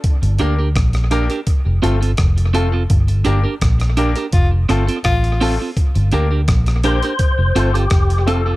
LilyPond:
<<
  \new Staff \with { instrumentName = "Tonewheel organ" } { \time 4/4 \key g \minor \tempo 4 = 84 r1 | r1 | r4. c''4~ c''16 g'8. a'8 | }
  \new Staff \with { instrumentName = "Clean electric guitar" } { \time 4/4 \key g \minor r8 <d' g' bes'>16 <d' g' bes'>16 r8 <d' g' bes'>16 <d' g' bes'>16 r8 <c' f' a'>16 <c' f' a'>16 r8 <c' f' a'>16 <c' f' a'>16 | r8 <d' g' bes'>16 <d' g' bes'>16 r8 <d' g' bes'>16 <d' g' bes'>16 r8 <c' f' a'>16 <c' f' a'>16 r8 <c' f' a'>16 <c' f' a'>16 | r8 <d' g' bes'>16 <d' g' bes'>16 r8 <d' g' bes'>16 <d' g' bes'>16 r8 <c' f' a'>16 <c' f' a'>16 r8 <c' f' a'>16 <c' f' a'>16 | }
  \new Staff \with { instrumentName = "Tenor saxophone" } { \time 4/4 \key g \minor r1 | r2 f'16 r8. f'8. r16 | r1 | }
  \new Staff \with { instrumentName = "Grand piano" } { \time 4/4 \key g \minor r8 <bes d' g' bes'>8 r8 <bes d' g' bes'>8 r8 <a c' f' a'>8 r8 <a c' f' a'>8 | r8 <bes d' g' bes'>8 r8 <bes d' g' bes'>8 r8 <a c' f' a'>8 r8 <a c' f' a'>8 | r8 <bes d' g' bes'>8 r8 <bes d' g' bes'>8 r8 <a c' f' a'>8 r8 <a c' f' a'>8 | }
  \new Staff \with { instrumentName = "Fingered electric bass" } { \clef bass \time 4/4 \key g \minor r16 g,,16 d,8 bes,,8. r8 f,,16 g,,8 f,,4 | g,,8 g,,16 r16 bes,,8. r16 f,,8 g,,16 r16 a,,8. r16 | r16 g,,16 d,8 bes,,8. r8 f,,16 g,,8 f,,4 | }
  \new DrumStaff \with { instrumentName = "Drums" } \drummode { \time 4/4 <hh bd>16 hh16 hh8 <hh bd ss>16 <hh ss>16 hh16 hh16 <hh bd>8 hh16 hh16 <hh bd ss>16 hh16 hh8 | <hh bd>16 hh16 hh8 <hh bd ss>16 <hh ss>16 hh16 hh16 <hh bd>8 <hh ss>16 hh16 <hh bd ss>16 hh16 hho8 | <hh bd>16 hh16 hh8 <hh bd ss>16 <hh ss>16 hh16 hh16 <hh bd>8 hh16 hh16 <hh bd ss>16 hh16 hh8 | }
>>